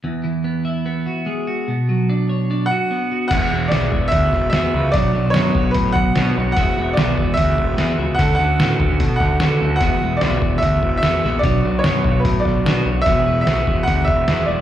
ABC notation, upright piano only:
X:1
M:4/4
L:1/8
Q:1/4=148
K:Emix
V:1 name="Upright piano"
z8 | z4 z f3 | f2 d2 e2 e2 | d2 c2 B f3 |
f2 d2 e4 | f f3 z f3 | f2 d2 e2 e2 | d2 c2 B d3 |
e2 e2 f e2 d |]